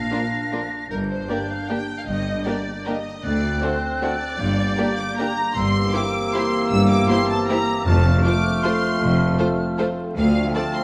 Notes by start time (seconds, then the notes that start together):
Already playing: D4 F5 A#6
0.10 F3 A#3 D4 F4 A#4
0.52 F3 A#3 D4 F4 A#4
0.90 G1 G2 D4 A#4 G6
1.10 C5
1.28 D3 A#3 D4 G4 A#4 D5
1.49 F5
1.68 D3 A#3 D4 G4 A#4 G5
1.98 F5
2.07 G1 G2 D#5
2.45 D3 A#3 D4 G4 A#4 D5
2.85 D3 A#3 D4 G4 A#4 D#5
3.23 D2 C4 D5 F#6
3.62 D3 A3 C4 D4 F#4 A4 C5
4.01 D3 A3 C4 D4 F#4 A4 D5
4.39 G1 G2 A#3 G6
4.77 D3 G3 A#3 D4 G4 A#4
4.98 D6
5.17 D3 G3 A#3 D4 G4 A#4 A#5
5.55 G1 G2 E3 A#3 C4 G4 C6 E6
5.93 A#3 E4 G4 C5 D6
6.33 A#3 E4 G4 C5 C6
6.71 G1 G2 E6
6.89 D6
7.09 A#3 E4 G4 C5 C6
7.29 A5
7.48 A#3 E4 G4 C5 A#5
7.86 F1 F2 F3 A3 C4 F4 A5 F6
8.23 A3 F4 A4 C5 D6
8.63 A3 F4 A4 C5 C6
9.00 F1 F2
9.38 A3 F4 A4 C5
9.78 A3 F4 A4 C5
10.16 D2 F3 A3 C4 F4 F5 F6
10.54 C4 F4 A4 D5 A5
10.74 C6